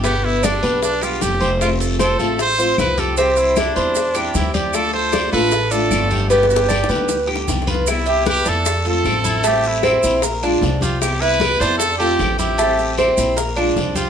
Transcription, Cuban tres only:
\new Staff \with { instrumentName = "Cuban tres" } { \time 4/4 \key c \major \tempo 4 = 153 b4 d'8 b'4 g'4 c''8~ | c''8 a'8 c''8 a'4 c''4 g'8 | c'4 e'8 c''4 g'4 d''8~ | d''8 a'8 d''8 a'4 d''4 g'8 |
b4 d'8 b'4 g'4 b'8 | r8 e'8 b'8 d'4 a'4 e'8 | a4 c'4 bes'8 d'4 g'8~ | g'8 e'8 b'8 d'4 a'4 e'8 |
a4 c'4 bes'8 d'4 g'8 | }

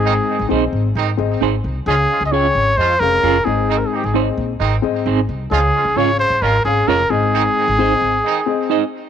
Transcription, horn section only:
\new Staff \with { instrumentName = "Horn section" } { \time 4/4 \key aes \major \tempo 4 = 132 <ees aes c' ees'>16 r16 <ees aes c' ees'>16 r4 r16 <ees aes c' ees'>8 r4. | <f aes des' f'>16 r16 <f aes des' f'>16 r4 r16 <f aes des' f'>8 r4. | <ees aes c' ees'>16 r16 <ees aes c' ees'>16 r4 r16 <ees aes c' ees'>8 r4. | <f aes des' f'>16 r16 <f aes des' f'>16 r4 r16 <f aes des' f'>8 r4. |
<ees aes c' ees'>16 r16 <ees aes c' ees'>16 r4 r16 <ees aes c' ees'>8 r4. | }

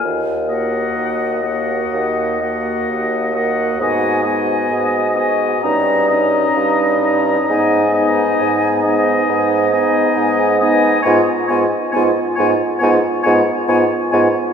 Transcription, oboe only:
\new Staff \with { instrumentName = "Oboe" } { \time 4/4 \key aes \dorian \tempo 4 = 66 r8 ees''4 ees''4 ees''4 ees''8 | ees''8 ees''4 ees''8 ees''8 ees''4 ees''8 | ees''8 ees''4 ees''4 ees''4 ees''8 | \key cis \mixolydian cis''8 cis''8 cis''8 cis''8 cis''8 cis''8 cis''8 cis''8 | }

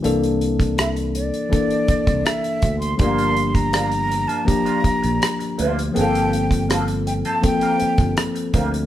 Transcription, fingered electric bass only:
\new Staff \with { instrumentName = "Fingered electric bass" } { \clef bass \time 4/4 \key g \dorian \tempo 4 = 81 c,4.~ c,16 r4 c,16 r8 d,8 | g,,4.~ g,,16 r4 bes,,16 r8 d,8 | g,,4.~ g,,16 r4 g,,16 r8 d,8 | }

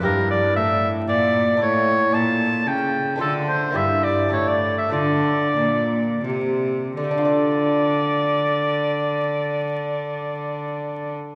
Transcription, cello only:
\new Staff \with { instrumentName = "Cello" } { \clef bass \time 3/4 \key d \minor \tempo 4 = 97 g,4 a,4 bes,4 | a,4 bes,4 cis4 | d4 g,4 a,4 | d4 bes,4 c4 |
d2.~ | d2. | }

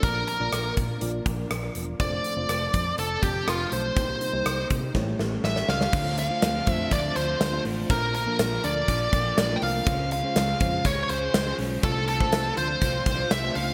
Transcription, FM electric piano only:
<<
  \new Staff \with { instrumentName = "FM electric piano" } { \time 4/4 \key f \mixolydian \tempo 4 = 122 <bes d' f' d''>8. <bes d' f' d''>4 r16 <bes d' f' d''>4.~ <bes d' f' d''>16 r16 | <a d' f' c''>8. <a d' f' c''>4.~ <a d' f' c''>16 r4 <a d' f' c''>8 | <bes ees' g' c''>8. <bes ees' g' c''>4 r16 <a e' g' cis''>4.~ <a e' g' cis''>16 r16 | \key d \minor <a d' f' c''>8. <a d' f' c''>8. <a d' f' c''>4. r16 <a d' f' c''>16 <a d' f' c''>8 |
<d' f' a' bes'>8. <bes d' f' bes'>8. <d' f' a' bes'>4. r16 <a d' f' bes'>16 <a d' f' bes'>8 | <aes des' f' c''>8. <aes des' f' c''>8. <aes des' f' c''>4. r16 <aes des' f' c''>16 <aes des' f' c''>8 | <a d' f' c''>8. <a d' f' c''>8. <a d' f' c''>4. r16 <a d' f' c''>16 <a d' f' c''>8 | }
  \new Staff \with { instrumentName = "FM electric piano" } { \clef bass \time 4/4 \key f \mixolydian bes,4. r2 r8 | r1 | c4. r8 a,4. r8 | \key d \minor d4. r2 r8 |
bes,4. r2 r8 | des4. r2 r8 | c4. r2 r8 | }
>>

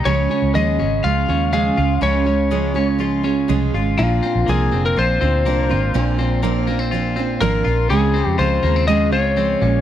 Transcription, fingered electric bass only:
\new Staff \with { instrumentName = "Fingered electric bass" } { \clef bass \time 4/4 \key des \lydian \tempo 4 = 122 des,8 r16 des,16 ees,8 aes,,8 des,8 ees,4 des,8 | des,2. c,8 aes,,8 | bes,,8 r16 bes,,16 c,8 f,,8 bes,,8 d,8 c,8 aes,,8 | bes,,2. aes,,8 bes,,8 |
des,8. f,16 des,8 ees,4 des,4 bes,,8 | }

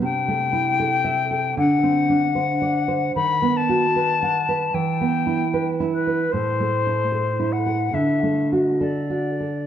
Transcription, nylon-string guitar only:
\new Staff \with { instrumentName = "Nylon-string guitar" } { \time 4/4 \key d \mixolydian \tempo 4 = 76 \tuplet 3/2 { c8 a8 e'8 a'8 e''8 a'8 d8 c'8 d'8 c''8 d''8 c''8 } | \tuplet 3/2 { dis8 b8 fis'8 b'8 fis''8 b'8 e8 b8 e'8 b'8 e'8 b'8 } | \tuplet 3/2 { a,8 a8 e'8 a'8 e'8 a'8 d8 a8 fis'8 a'8 fis'8 a'8 } | }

